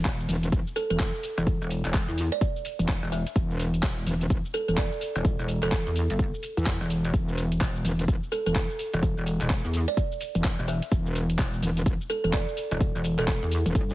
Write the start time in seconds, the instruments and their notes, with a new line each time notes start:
0.05 wobble bass E1, kick, clap, closed hi-hat, shaker
0.20 shaker
0.29 wobble bass E1, open hi-hat, shaker
0.43 closed hi-hat, shaker
0.52 wobble bass E1, kick, closed hi-hat, shaker
0.67 shaker
0.76 kalimba A4, open hi-hat, shaker
0.90 wobble bass E1, kalimba A4, closed hi-hat, shaker
1.00 kick, clap, closed hi-hat, shaker
1.15 shaker
1.23 open hi-hat, shaker
1.38 wobble bass E1, closed hi-hat, shaker
1.47 kick, closed hi-hat, shaker
1.61 wobble bass E1, shaker
1.70 open hi-hat, shaker
1.85 wobble bass E1, clap, closed hi-hat, shaker
1.94 kick, clap, closed hi-hat, shaker
2.08 wobble bass E2, shaker
2.18 open hi-hat, shaker
2.32 kalimba D5, closed hi-hat, shaker
2.41 kick, closed hi-hat, shaker
2.56 shaker
2.65 open hi-hat, shaker
2.79 wobble bass E1, closed hi-hat, shaker
2.89 kick, clap, closed hi-hat, shaker
3.03 wobble bass E1, shaker
3.12 kalimba E5, open hi-hat, shaker
3.27 closed hi-hat, shaker
3.36 wobble bass E1, kick, closed hi-hat, shaker
3.51 shaker
3.59 open hi-hat, shaker
3.74 closed hi-hat, shaker
3.83 wobble bass E1, kick, clap, closed hi-hat, shaker
3.98 shaker
4.07 wobble bass E1, open hi-hat, shaker
4.21 closed hi-hat, shaker
4.30 wobble bass E1, kick, closed hi-hat, shaker
4.45 shaker
4.54 kalimba A4, open hi-hat, shaker
4.68 wobble bass E1, kalimba A4, closed hi-hat, shaker
4.77 kalimba D5, kick, clap, closed hi-hat, shaker
4.92 shaker
5.01 open hi-hat, shaker
5.16 wobble bass E1, closed hi-hat, shaker
5.25 kick, closed hi-hat, shaker
5.39 wobble bass E1, shaker
5.48 open hi-hat, shaker
5.63 wobble bass E1, kalimba A4, clap, closed hi-hat, shaker
5.72 kick, clap, closed hi-hat, shaker
5.86 wobble bass E2, shaker
5.96 open hi-hat, shaker
6.10 wobble bass G1, closed hi-hat, shaker
6.19 kick, closed hi-hat, shaker
6.34 shaker
6.43 open hi-hat, shaker
6.57 wobble bass E2, closed hi-hat, shaker
6.66 kick, clap, closed hi-hat, shaker
6.81 wobble bass E1, shaker
6.90 open hi-hat, shaker
7.05 closed hi-hat, shaker
7.14 wobble bass E1, kick, closed hi-hat, shaker
7.29 shaker
7.37 open hi-hat, shaker
7.52 closed hi-hat, shaker
7.61 wobble bass E1, kick, clap, closed hi-hat, shaker
7.76 shaker
7.85 wobble bass E1, open hi-hat, shaker
7.99 closed hi-hat, shaker
8.08 wobble bass E1, kick, closed hi-hat, shaker
8.23 shaker
8.32 kalimba A4, open hi-hat, shaker
8.46 wobble bass E1, kalimba A4, closed hi-hat, shaker
8.55 kick, clap, closed hi-hat, shaker
8.70 shaker
8.79 open hi-hat, shaker
8.94 wobble bass E1, closed hi-hat, shaker
9.03 kick, closed hi-hat, shaker
9.17 wobble bass E1, shaker
9.26 open hi-hat, shaker
9.41 wobble bass E1, clap, closed hi-hat, shaker
9.50 kick, clap, closed hi-hat, shaker
9.64 wobble bass E2, shaker
9.74 open hi-hat, shaker
9.88 kalimba D5, closed hi-hat, shaker
9.97 kick, closed hi-hat, shaker
10.12 shaker
10.21 open hi-hat, shaker
10.35 wobble bass E1, closed hi-hat, shaker
10.44 kick, clap, closed hi-hat, shaker
10.59 wobble bass E1, shaker
10.68 kalimba E5, open hi-hat, shaker
10.82 closed hi-hat, shaker
10.92 wobble bass E1, kick, closed hi-hat, shaker
11.06 shaker
11.15 open hi-hat, shaker
11.30 closed hi-hat, shaker
11.39 wobble bass E1, kick, clap, closed hi-hat, shaker
11.54 shaker
11.62 wobble bass E1, open hi-hat, shaker
11.77 closed hi-hat, shaker
11.86 wobble bass E1, kick, closed hi-hat, shaker
12.01 shaker
12.10 kalimba A4, open hi-hat, shaker
12.24 wobble bass E1, kalimba A4, closed hi-hat, shaker
12.33 kalimba D5, kick, clap, closed hi-hat, shaker
12.48 shaker
12.57 open hi-hat, shaker
12.71 wobble bass E1, closed hi-hat, shaker
12.81 kick, closed hi-hat, shaker
12.95 wobble bass E1, shaker
13.04 open hi-hat, shaker
13.18 wobble bass E1, kalimba A4, clap, closed hi-hat, shaker
13.28 kick, clap, closed hi-hat, shaker
13.42 wobble bass E2, shaker
13.51 open hi-hat, shaker
13.66 wobble bass E1, closed hi-hat, shaker
13.75 wobble bass G1, kick, closed hi-hat, shaker
13.90 shaker